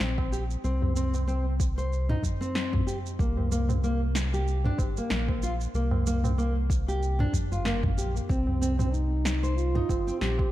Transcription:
Already playing: nylon-string guitar C4
0.00 analog synth bass A#1, snare, shaker
0.18 kick, tabla na
0.32 nylon-string guitar G4, shaker
0.51 shaker
0.64 analog synth bass C2, nylon-string guitar C4, shaker
0.82 tabla na, tabla ge
0.96 nylon-string guitar C4, shaker
1.14 tabla na, tabla tin, shaker
1.27 nylon-string guitar C4, shaker
1.60 kick, tabla na, shaker
1.78 nylon-string guitar C5, shaker
1.93 shaker
2.09 nylon-string guitar D#4, mid tom, tabla tin
2.23 kick, tabla ge, shaker
2.41 nylon-string guitar C4, tabla tin, shaker
2.55 snare, shaker
2.73 kick, mid tom, tabla ge
2.87 nylon-string guitar G4, tabla tin, shaker
3.06 shaker
3.19 analog synth bass C2, nylon-string guitar A#3, kick, shaker
3.37 tabla na, tabla ge
3.51 nylon-string guitar A#3, shaker
3.69 mid tom, tabla na, tabla tin, shaker
3.84 nylon-string guitar A#3, shaker
4.15 snare, tabla na, shaker
4.34 nylon-string guitar G4, shaker
4.48 shaker
4.64 nylon-string guitar D4, mid tom, tabla tin
4.78 analog synth bass G1, kick, tabla na, tabla tin, shaker
4.96 nylon-string guitar A#3, tabla tin, shaker
5.10 analog synth bass A#1, snare, shaker
5.28 kick, tabla na
5.43 nylon-string guitar F4, shaker
5.61 shaker
5.74 analog synth bass C2, nylon-string guitar A#3, shaker
5.91 tabla na, tabla ge
6.07 nylon-string guitar A#3, shaker
6.24 mid tom, tabla na, tabla tin, shaker
6.38 nylon-string guitar A#3, shaker
6.69 kick, tabla na, shaker
6.88 nylon-string guitar G4, shaker
7.03 shaker
7.19 nylon-string guitar D4, mid tom, tabla tin
7.33 kick, tabla ge, shaker
7.51 analog synth bass G1, nylon-string guitar F4, tabla tin, shaker
7.65 nylon-string guitar A#3, snare, shaker
7.83 kick, mid tom, tabla ge
7.97 analog synth bass A#1, nylon-string guitar G4, tabla tin, shaker
8.16 shaker
8.28 analog synth bass C2, duduk C4, nylon-string guitar C4, kick, shaker
8.47 tabla na, tabla ge
8.61 nylon-string guitar C4, shaker
8.79 nylon-string guitar C4, mid tom, tabla na, tabla tin, shaker
8.93 duduk D#4, shaker
9.25 snare, tabla na, shaker
9.43 nylon-string guitar C5, shaker
9.56 duduk F4, shaker
9.74 nylon-string guitar D#4, mid tom, tabla tin
9.88 analog synth bass G1, kick, tabla na, tabla tin, shaker
10.07 nylon-string guitar C4, tabla tin, shaker
10.19 analog synth bass A#1, duduk G4, snare, shaker
10.38 kick, tabla na

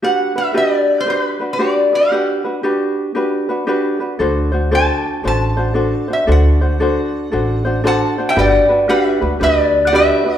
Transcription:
0.02 ukulele D4 F#4 G4 B4, resonator guitar played with a steel bar F#5
0.36 ukulele D4 F#4 B4, resonator guitar played with a steel bar E5
0.54 ukulele D4 F#4 G4 B4, resonator guitar played with a steel bar D#5
0.74 resonator guitar played with a steel bar D5
1.00 resonator guitar played with a steel bar C5
1.06 ukulele D4 F#4 G4 B4
1.10 resonator guitar played with a steel bar C5
1.21 resonator guitar played with a steel bar B4
1.40 ukulele D4 F#4 B4
1.53 resonator guitar played with a steel bar D5
1.59 ukulele D4 F#4 G4 B4
1.93 ukulele D4 F#4 B4, resonator guitar played with a steel bar F#5
2.12 ukulele D4 F#4 G4 B4
2.44 ukulele D4 F#4 B4
2.63 ukulele D4 F#4 G4 B4
3.15 ukulele D4 F#4 G4 B4
3.49 ukulele D4 F#4 B4
3.67 ukulele D4 F#4 G4 B4
4.00 ukulele D4 F#4 B4
4.19 upright bass D2, ukulele D4 F#4 A4 C5
4.52 ukulele D4 F#4 C5
4.71 ukulele D4 F#4 A4 C5, resonator guitar played with a steel bar A5
5.23 upright bass A1, ukulele D4 F#4 A4 C5
5.27 resonator guitar played with a steel bar A5
5.57 ukulele D4 F#4 C5
5.74 ukulele D4 F#4 A4 C5
6.08 ukulele D4 F#4 C5
6.13 resonator guitar played with a steel bar E5
6.27 upright bass D2, ukulele D4 F#4 A4 C5
6.32 resonator guitar played with a steel bar F#5
6.61 ukulele D4 F#4 C5
6.80 ukulele D4 F#4 A4 C5
7.31 upright bass A1, ukulele D4 F#4 A4 C5
7.65 ukulele D4 F#4 C5
7.84 ukulele D4 F#4 A4 C5, resonator guitar played with a steel bar A5
7.88 resonator guitar played with a steel bar F#5
8.18 ukulele D4 F#4 C5
8.29 resonator guitar played with a steel bar E5 G5
8.36 upright bass G1, ukulele D4 F#4 G4 B4, resonator guitar played with a steel bar F#5
8.40 resonator guitar played with a steel bar D5
8.69 ukulele D4 F#4 B4
8.89 ukulele D4 F#4 G4 B4, resonator guitar played with a steel bar B4 E5
9.21 upright bass D2, ukulele D4 F#4 B4
9.40 upright bass D2, ukulele D4 F#4 G4 B4, resonator guitar played with a steel bar B4 D5
9.87 resonator guitar played with a steel bar D5 F#5
9.92 ukulele D4 F#4 G4 B4, resonator guitar played with a steel bar B4 E5
10.24 ukulele D4 F#4 B4

